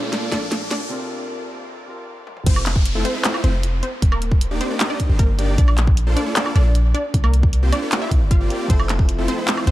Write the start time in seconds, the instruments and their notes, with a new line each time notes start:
Already playing: felt piano A#2 A#3 D4 A4, ambient pad A#3 F5 A5 D6, synth pluck D4 D5, riser
0.03 supersaw synth A#3 D4 F4 A4 D5
0.13 snare, closed hi-hat
0.30 808-style bass A#1, felt piano A#2 A#3 D4, supersaw synth A#3 D4 F4 A4 D5, synth pluck D4 D5, snare, closed hi-hat
0.34 felt piano A4
0.52 snare, closed hi-hat
0.71 synth pluck D4 D5, snare, closed hi-hat
0.89 felt piano C3 C4 F4
0.93 felt piano A#4
1.86 felt piano C3 C4 F4
1.90 felt piano A#4
2.27 high tom
2.37 mid tom
2.46 808-style bass F1, supersaw synth A3 C4 E4 F4 C5, synth pluck C4 C5, kick, closed hi-hat, crash, downlifter
2.56 high woodblock
2.66 clap, closed hi-hat
2.76 kick
2.85 closed hi-hat
2.95 supersaw synth A3 C4 E4 F4 A4
3.05 synth pluck C4 C5, closed hi-hat
3.15 supersaw synth A3 C4 E4 F4 C5
3.24 clap, closed hi-hat
3.34 high woodblock
3.44 808-style bass F1, supersaw synth A3 C4 E4 F4 C5, synth pluck C4 C5, closed hi-hat
3.63 closed hi-hat
3.83 synth pluck C4 C5, closed hi-hat
4.02 808-style bass D#1, kick, closed hi-hat
4.12 synth pluck A#3 A#4, high woodblock
4.22 closed hi-hat
4.32 kick
4.41 closed hi-hat
4.51 supersaw synth A#3 D4 D#4 G4 D5
4.61 synth pluck C4 C5, closed hi-hat
4.70 supersaw synth A#3 D4 D#4 G4 D#5
4.80 clap, closed hi-hat
4.90 synth pluck D4 D5
5.00 kick, closed hi-hat
5.09 808-style bass G1, supersaw synth A#3 D4 D#4 G4 C5
5.19 synth pluck A#3 A#4, kick, closed hi-hat
5.39 supersaw synth A#3 D4 D#4 G4 D5, closed hi-hat
5.58 808-style bass A#1, synth pluck D4 D5, kick, closed hi-hat
5.68 high woodblock
5.78 clap, closed hi-hat
5.87 kick
5.97 closed hi-hat
6.07 supersaw synth A#3 D4 F4 A4 C5
6.17 synth pluck D4 D5, closed hi-hat
6.26 supersaw synth A#3 D4 F4 A4 D5
6.36 clap, closed hi-hat
6.46 high woodblock
6.56 808-style bass A#1, supersaw synth A#3 D4 F4 A4 D5, synth pluck D4 D5, closed hi-hat
6.75 closed hi-hat
6.94 synth pluck D4 D5, closed hi-hat
7.14 808-style bass C2, kick, closed hi-hat
7.24 synth pluck A#3 A#4, high woodblock
7.34 closed hi-hat
7.43 kick
7.53 closed hi-hat
7.63 supersaw synth A#3 C4 F4 G4 C5
7.72 synth pluck D4 D5, closed hi-hat, high woodblock
7.82 supersaw synth A#3 C4 F4 G4 D5
7.92 clap, closed hi-hat
8.02 synth pluck E4 E5
8.11 808-style bass A#1, kick, closed hi-hat
8.21 808-style bass G1
8.31 synth pluck F4 F5, kick, closed hi-hat
8.41 supersaw synth A#3 C4 F4 G4 D5
8.50 closed hi-hat
8.68 808-style bass F1, felt piano F3 C4 E4 A4, supersaw synth A3 C4 E4 F4 C5, synth pluck C4 C5, kick, closed hi-hat, crash
8.80 high woodblock
8.89 clap, closed hi-hat
8.99 kick
9.09 closed hi-hat
9.19 supersaw synth A3 C4 E4 F4 A4
9.28 synth pluck C4 C5, closed hi-hat
9.38 supersaw synth A3 C4 E4 F4 C5
9.48 clap, closed hi-hat, crash
9.57 high woodblock
9.65 808-style bass F1, felt piano F3 C4 E4, supersaw synth A3 C4 E4 F4 C5, synth pluck C4 C5, closed hi-hat